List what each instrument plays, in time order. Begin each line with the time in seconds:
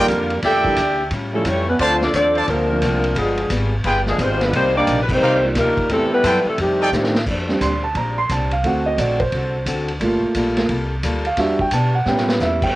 Already playing: trombone section D3 G3 A#3, saxophone section G3 D4 F4 A#4
0.08 upright bass F2, steel-string acoustic guitar D#3 G3 D4 F4, kick, hi-hat pedal, ride
0.30 ride
0.42 upright bass E2, trombone section A#2 D3 A3, steel-string acoustic guitar E3 A#3 D4 G4, saxophone section G3 D4 E4 A4, trumpet section G4 D5 E5 G5, kick, snare, ride
0.64 grand piano E3 G3 A#3 D4 E4, kick
0.76 upright bass D2, steel-string acoustic guitar E3 A#3 D4 G4, kick, hi-hat pedal, ride
1.11 upright bass A2, steel-string acoustic guitar A2 G3 C#4 F4, kick, ride
1.33 trombone section C#3 E3 A3, grand piano F3 G3 A3 C#4 E4, saxophone section G3 C#4 E4 A4
1.45 upright bass F2, steel-string acoustic guitar A2 G3 C#4 F4, trombone section E3 G3 C#4, saxophone section A3 E4 G4 C#5, kick, hi-hat pedal, ride
1.68 saxophone section G3 C#4 E4 B4, trombone section B3
1.78 upright bass D2, steel-string acoustic guitar D3 A3, trombone section F3 A3 C4, saxophone section A3 D4 F4 B4 C5, trumpet section F4 C5 D5 A5, kick, ride
1.83 steel-string acoustic guitar C4 F4
2.01 trombone section F3 A3 D4, saxophone section C4 F4 A4 D5, snare
2.13 upright bass D#2, steel-string acoustic guitar D3 A3 C4 F4, trombone section F3 A3 D4, saxophone section C4 F4 A4 D5, kick, hi-hat pedal, ride
2.35 trumpet section F4 C5 D5 A5, ride
2.48 upright bass D2, trombone section C3 F3 A#3, steel-string acoustic guitar D3 A3 C4 F4, saxophone section F3 C4 D4 A#4, kick, ride
2.70 grand piano F3 C4 D4 F4
2.82 upright bass C2, steel-string acoustic guitar D3 A3 C4 F4, kick, hi-hat pedal, ride
3.04 ride
3.15 upright bass G1, trombone section D3 F3 G#3, saxophone section F3 B3 D4 G#4, steel-string acoustic guitar G3 B3 F4 G#4, kick, ride
3.38 ride
3.50 upright bass G#1, steel-string acoustic guitar G3 B3 F4 G#4, kick, hi-hat pedal, ride
3.84 upright bass G1, steel-string acoustic guitar G3 B3 F4 G#4, trumpet section F4 G#4 B4 G5, kick, ride
4.06 trombone section D3 F3 G#3, saxophone section F3 B3 D4 G#4, snare
4.18 upright bass G#1, steel-string acoustic guitar G3 B3 F4 G#4, saxophone section G#3 D4 F4 C5, trombone section C4, kick, hi-hat pedal, ride
4.41 trombone section D3 F3 B3, saxophone section G#3 D4 F4 B4, snare, ride
4.53 upright bass C2, steel-string acoustic guitar C3 F3 A#3 D#4, trombone section D#3 G3 C4, saxophone section A#3 D#4 G4 C5, kick, ride
4.76 trombone section G3 A#3 D4, saxophone section A#3 D#4 G4 D5
4.87 upright bass A#1, steel-string acoustic guitar C3 F3 A#3 D#4, kick, hi-hat pedal, ride
5.02 saxophone section B4
5.09 trombone section D#3 G3 C4, saxophone section A#3 D#4 G4 C5, kick, crash
5.20 upright bass C2, steel-string acoustic guitar C3 F3 A#3, trumpet section D#4 A#4 D5 F5
5.24 steel-string acoustic guitar D#4
5.44 grand piano D#3 G3 A#3 F4 D5
5.55 upright bass D2, steel-string acoustic guitar C3 F3 A#3 D#4, trombone section D#3 G3 A#3, saxophone section G3 D4 D#4 A#4, kick, snare, hi-hat pedal, ride
5.77 muted upright bass stroke, kick, ride
5.89 upright bass E2, steel-string acoustic guitar A2 G3 C4 E4, trombone section C3 E3 A3, grand piano E3 A3 B3 C4 G4, saxophone section G3 C4 E4 A4, kick, ride
6.13 trombone section E3 G3 B3, saxophone section A3 E4 G4 B4
6.23 upright bass F#2, steel-string acoustic guitar A2 G3 C4 E4, trumpet section E4 A4 C5 G5, kick, hi-hat pedal, ride
6.45 trombone section C3 E3 A3, saxophone section G3 C4 E4 A4, muted upright bass stroke
6.58 upright bass F2, steel-string acoustic guitar F2 D#3 A3, trombone section C3 D#3 G3, saxophone section D#3 A3 C4 G4, kick, ride
6.62 steel-string acoustic guitar D4
6.80 trumpet section D#4 A4 D5 G5
6.92 steel-string acoustic guitar F2 D#3 A3 D4, upright bass A2, grand piano D#3 A3 C4 D4 G4, snare, hi-hat pedal
7.04 snare
7.15 snare
7.26 upright bass F2, steel-string acoustic guitar A#2 G3 C4 D4, kick, crash
7.49 grand piano G3 C4 D4, snare
7.60 upright bass D2, steel-string acoustic guitar A#2 G3 C4 D4, grand piano C6, kick, hi-hat pedal, ride
7.84 grand piano A5
7.95 upright bass A#1, steel-string acoustic guitar A#2 G3 C4 D4, grand piano A#5, kick, ride
8.18 grand piano C6
8.29 upright bass C2, steel-string acoustic guitar A#2 G3 C4 D4, grand piano A5, kick, hi-hat pedal, ride
8.51 grand piano F5, ride
8.63 upright bass D2, steel-string acoustic guitar D3 C4 F#4 A4, grand piano A3 C4 F#4 F#5, kick, ride
8.86 grand piano D#5
8.98 upright bass A#1, steel-string acoustic guitar D3 C4 F#4 A4, grand piano D5, kick, hi-hat pedal, ride
9.20 grand piano C5, kick, ride
9.32 upright bass C2, steel-string acoustic guitar D3 C4 F#4 A4, kick, ride
9.66 upright bass D2, steel-string acoustic guitar D3 C4 F#4 A4, kick, hi-hat pedal, ride
9.88 ride
10.00 upright bass G1, steel-string acoustic guitar G3 A#3 F4 A4, grand piano A3 A#3 F4, kick, ride
10.22 muted upright bass stroke
10.34 upright bass A#1, steel-string acoustic guitar G3 A#3 F4 A4, kick, hi-hat pedal, ride
10.57 grand piano A3 A#3 F4, snare, ride
10.69 upright bass C2, steel-string acoustic guitar G3 A#3 F4 A4, kick, ride
11.03 upright bass D2, steel-string acoustic guitar G3 A#3 F4 A4, kick, hi-hat pedal, ride
11.25 grand piano F5, ride
11.37 upright bass E2, steel-string acoustic guitar E3 B3 D4 G4, grand piano G3 D4 F#4 E5, kick, snare, ride
11.59 grand piano G5, kick
11.71 upright bass B2, steel-string acoustic guitar E3 B3 D4 G4, grand piano A5, kick, hi-hat pedal, ride
11.95 grand piano F#5
12.06 upright bass A2, steel-string acoustic guitar A2 G3 C#4 E4, grand piano G3 B3 C#4 G5, snare
12.17 snare
12.29 grand piano B4, snare
12.40 upright bass E2, steel-string acoustic guitar A2 G3 C#4 E4, grand piano E5, snare, hi-hat pedal
12.62 grand piano G5, kick, crash